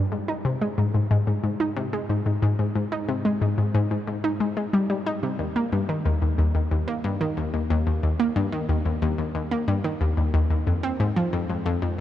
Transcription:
0.12 0.19 G#2 medium
0.28 0.36 D#4 medium
0.45 0.57 C3 medium
0.61 0.77 G#3 medium
0.78 0.90 G#2 medium
0.94 1.06 G#2 medium
1.11 1.23 G#2 loud
1.27 1.34 G#2 medium
1.44 1.51 G#2 medium
1.60 1.67 D#4 medium
1.77 1.89 C3 loud
1.93 2.09 G#3 medium
2.09 2.22 G#2 medium
2.26 2.38 G#2 medium
2.42 2.55 G#2 loud
2.59 2.66 G#2 medium
2.75 2.83 G#2 medium
2.92 2.99 D#4 medium
3.08 3.20 C3 medium
3.25 3.41 G#3 medium
3.41 3.53 G#2 medium
3.58 3.70 G#2 medium
3.74 3.86 G#2 loud
3.91 3.98 G#2 medium
4.07 4.15 G#2 medium
4.24 4.31 D#4 medium
4.40 4.52 G#3 medium
4.57 4.69 G#3 medium
4.73 4.85 G3 medium
4.90 5.06 G3 medium
5.06 5.18 D#4 medium
5.23 5.39 C3 medium
5.39 5.46 D#2 medium
5.56 5.63 A#3 medium
5.72 5.84 G2 medium
5.89 6.05 D#3 medium
6.05 6.17 D#2 medium
6.22 6.34 D#2 medium
6.38 6.50 D#2 medium
6.55 6.62 D#2 medium
6.71 6.78 D#2 medium
6.88 6.95 A#3 medium
7.04 7.16 G2 loud
7.21 7.36 D#3 medium
7.37 7.49 D#2 medium
7.54 7.66 D#2 medium
7.70 7.82 D#2 loud
7.87 7.94 D#2 medium
8.03 8.10 D#2 medium
8.20 8.27 A#3 medium
8.36 8.48 G2 medium
8.52 8.68 D#3 medium
8.69 8.81 D#2 medium
8.85 8.97 D#2 medium
9.02 9.14 D#2 loud
9.18 9.26 D#2 medium
9.35 9.42 D#2 medium
9.51 9.59 A#3 medium
9.68 9.80 G2 loud
9.84 10.00 D#3 medium
10.01 10.13 D#2 medium
10.17 10.29 D#2 medium
10.34 10.46 D#2 medium
10.50 10.58 D#2 medium
10.67 10.74 F2 medium
10.83 10.91 C4 medium
11.00 11.12 G#2 medium
11.16 11.32 F3 medium
11.33 11.45 F2 medium
11.49 11.61 F2 medium
11.66 11.78 F2 loud
11.82 11.89 F2 medium

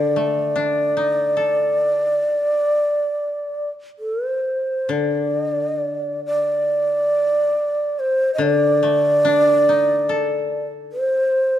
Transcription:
0.00 2.19 D3 medium
0.00 0.56 D#3 soft
0.00 3.70 D5 medium
0.16 1.78 A3 soft
0.56 2.20 D4 soft
0.97 2.63 D#4 soft
1.37 3.07 A4 soft
3.99 4.27 A4 medium
4.27 4.93 C5 medium
4.89 7.53 D3 soft
4.89 6.25 D5 medium
6.26 8.01 D5 medium
7.99 8.34 C5 medium
8.34 8.44 D#5 medium
8.38 10.89 D3 soft
8.38 10.66 D5 medium
8.83 10.51 A3 soft
9.25 10.90 D4 soft
9.69 11.31 D#4 soft
10.09 11.59 A4 soft
10.93 11.59 C5 medium

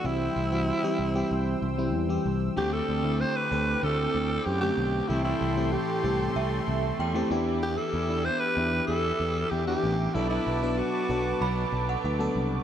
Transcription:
0.00 0.42 E3 medium
0.00 2.53 E6 medium
0.04 0.27 C2 loud
0.04 0.42 G3 medium
0.04 0.42 C4 medium
0.04 1.94 E4 loud
0.04 0.42 G4 medium
0.04 2.55 C5 medium
0.04 2.54 G5 medium
0.36 0.70 C2 medium
0.51 0.76 E3 medium
0.51 0.77 G3 medium
0.51 0.77 C4 medium
0.51 0.77 F#4 medium
0.83 1.08 E3 medium
0.83 1.08 G3 medium
0.83 1.09 C4 medium
0.83 1.09 G4 loud
0.99 1.22 C2 loud
1.14 1.65 E3 medium
1.14 1.65 G3 medium
1.14 1.65 C4 medium
1.14 1.65 G4 loud
1.31 1.54 C2 loud
1.62 1.95 C2 loud
1.78 2.03 E3 medium
1.78 2.03 G3 medium
1.78 2.03 C4 medium
1.78 2.03 E4 medium
1.95 2.17 E2 medium
2.09 2.47 E3 medium
2.09 2.47 G3 medium
2.09 2.47 C4 medium
2.09 2.47 G4 loud
2.26 2.48 C2 medium
2.56 2.80 D2 loud
2.56 2.94 D3 medium
2.56 3.82 D3 medium
2.56 2.94 A3 medium
2.56 3.85 A3 medium
2.56 2.94 C4 medium
2.56 5.07 C4 medium
2.56 3.85 D4 medium
2.56 2.95 G4 medium
2.56 2.74 G4 loud
2.56 7.27 G5 medium
2.56 5.07 D6 medium
2.73 3.22 A4 loud
2.89 3.23 D2 medium
3.04 3.42 D3 medium
3.04 3.42 A3 medium
3.04 3.42 C4 medium
3.04 3.42 E4 medium
3.20 3.37 C5 loud
3.36 3.85 B4 loud
3.51 3.74 D2 loud
3.51 4.39 D3 medium
3.51 4.39 A3 medium
3.51 4.39 C4 medium
3.51 4.39 A4 medium
3.83 4.06 D2 loud
3.83 5.09 D3 medium
3.83 5.12 A3 medium
3.83 5.11 D4 medium
3.83 4.47 A4 loud
4.15 4.38 D2 medium
4.46 4.69 F#2 medium
4.46 4.60 G4 medium
4.61 5.00 D3 medium
4.61 5.00 A3 medium
4.61 5.00 C4 medium
4.61 5.10 G4 loud
4.61 5.00 G4 medium
4.78 5.01 B1 medium
5.08 5.32 C2 loud
5.08 6.35 A2 medium
5.08 5.47 E3 medium
5.08 6.36 E3 medium
5.08 5.47 A3 medium
5.08 5.47 C4 medium
5.08 5.23 E4 medium
5.08 5.47 G4 medium
5.08 7.28 A4 medium
5.08 7.29 C6 medium
5.12 6.36 A3 medium
5.24 5.73 E4 medium
5.41 5.75 C2 medium
5.56 5.94 E3 medium
5.56 5.94 A3 medium
5.56 5.95 C4 medium
5.56 5.95 G4 medium
5.72 6.67 G4 medium
6.03 6.27 C2 medium
6.03 6.91 E3 medium
6.03 6.92 A3 medium
6.03 6.92 C4 medium
6.03 6.92 G4 medium
6.36 6.59 C2 loud
6.36 6.98 A2 medium
6.36 7.00 E3 medium
6.36 7.00 A3 medium
6.36 6.95 E5 medium
6.68 6.91 C2 loud
6.99 7.22 E2 medium
6.99 7.30 A2 medium
6.99 7.31 E3 medium
6.99 7.31 A3 medium
6.99 7.44 G5 loud
7.14 7.29 E3 medium
7.14 7.31 A3 medium
7.14 7.31 C4 medium
7.14 7.30 G4 loud
7.30 7.76 E2 medium
7.30 7.94 E3 medium
7.30 7.94 B3 medium
7.30 7.96 B3 medium
7.30 7.94 D4 medium
7.30 7.92 E4 medium
7.30 7.94 G4 loud
7.30 10.13 G4 medium
7.30 10.13 E5 medium
7.30 12.63 D6 medium
7.62 7.79 G4 loud
7.77 8.26 A4 loud
7.94 8.28 E2 loud
7.94 8.90 B3 soft
7.94 8.88 E4 soft
8.09 8.47 E3 medium
8.09 8.47 B3 medium
8.09 8.47 D4 medium
8.09 8.48 G4 medium
8.24 8.41 C5 loud
8.40 8.86 B4 loud
8.57 8.80 E2 medium
8.57 9.44 E3 medium
8.57 9.45 B3 medium
8.57 9.45 D4 medium
8.57 9.45 E4 medium
8.87 9.11 E2 loud
8.87 10.15 E3 medium
8.87 10.18 B3 medium
8.87 9.52 A4 loud
8.91 10.16 E4 medium
9.20 9.43 E2 medium
9.50 9.74 E2 loud
9.50 9.66 G4 loud
9.67 10.05 E3 medium
9.67 10.05 B3 medium
9.67 10.05 D4 medium
9.67 10.15 G4 loud
9.67 10.05 G4 medium
9.84 10.06 A1 medium
10.14 10.38 B1 loud
10.14 11.39 B2 medium
10.14 10.52 F#3 medium
10.14 11.41 F#3 medium
10.14 10.52 B3 medium
10.14 10.53 D4 medium
10.14 10.29 E4 medium
10.14 10.53 A4 medium
10.14 12.63 B4 medium
10.14 12.63 A5 medium
10.19 11.43 B3 medium
10.30 10.79 E4 medium
10.47 10.81 B1 medium
10.62 11.00 F#3 medium
10.62 11.00 B3 medium
10.62 11.00 D4 medium
10.62 11.00 B4 medium
10.78 11.73 F#4 medium
11.09 11.32 B1 loud
11.09 11.97 F#3 medium
11.09 11.97 B3 medium
11.09 11.97 D4 medium
11.09 11.98 A4 medium
11.40 11.64 B1 loud
11.40 12.63 B2 medium
11.40 12.63 F#3 medium
11.40 12.63 B3 medium
11.40 11.90 B5 loud
11.72 11.95 B1 medium
11.89 12.04 F#5 medium
12.04 12.27 D2 medium
12.04 12.49 F#5 medium
12.19 12.57 F#3 medium
12.19 12.57 B3 medium
12.19 12.57 D4 medium
12.19 12.58 A4 loud
12.36 12.58 C2 medium

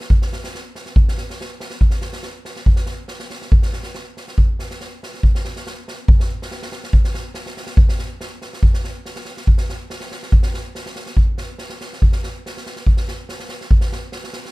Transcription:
0.01 snare soft
0.10 kick medium
0.22 snare soft
0.33 snare soft
0.44 snare soft
0.55 snare soft
0.75 snare soft
0.86 snare soft
0.96 kick medium
1.08 snare soft
1.18 snare soft
1.30 snare soft
1.41 snare soft
1.60 snare soft
1.70 snare soft
1.81 kick medium
1.91 snare soft
2.02 snare soft
2.13 snare soft
2.23 snare soft
2.45 snare soft
2.56 snare soft
2.66 kick medium
2.76 snare soft
2.86 snare soft
3.08 snare soft
3.20 snare soft
3.30 snare soft
3.42 snare soft
3.52 kick medium
3.63 snare soft
3.73 snare soft
3.83 snare soft
3.95 snare soft
4.17 snare soft
4.28 snare soft
4.38 kick medium
4.59 snare soft
4.71 snare soft
4.81 snare soft
5.03 snare soft
5.14 snare soft
5.23 kick medium
5.35 snare soft
5.45 snare soft
5.56 snare soft
5.67 snare soft
5.88 snare soft
6.08 kick loud
6.20 snare soft
6.42 snare soft
6.51 snare soft
6.62 snare soft
6.72 snare soft
6.84 snare soft
6.93 kick medium
7.04 snare soft
7.14 snare soft
7.34 snare soft
7.46 snare soft
7.57 snare soft
7.67 snare soft
7.77 kick medium
7.89 snare soft
7.99 snare soft
8.21 snare soft
8.42 snare soft
8.53 snare soft
8.63 kick medium
8.74 snare soft
8.84 snare soft
9.06 snare soft
9.16 snare soft
9.25 snare soft
9.37 snare soft
9.47 kick medium
9.58 snare soft
9.69 snare soft
9.90 snare soft
10.01 snare soft
10.11 snare soft
10.23 snare soft
10.32 kick medium
10.43 snare soft
10.54 snare soft
10.75 snare soft
10.86 snare soft
10.96 snare soft
11.06 snare soft
11.17 kick medium
11.38 snare soft
11.58 snare soft
11.70 snare soft
11.81 snare soft
11.93 snare soft
12.02 kick medium
12.12 snare soft
12.24 snare soft
12.46 snare soft
12.57 snare soft
12.66 snare soft
12.76 snare soft
12.87 kick medium
12.97 snare soft
13.08 snare soft
13.29 snare soft
13.40 snare soft
13.49 snare soft
13.61 snare soft
13.71 kick medium
13.81 snare soft
13.92 snare soft
14.12 snare soft
14.24 snare soft
14.33 snare soft
14.45 snare soft

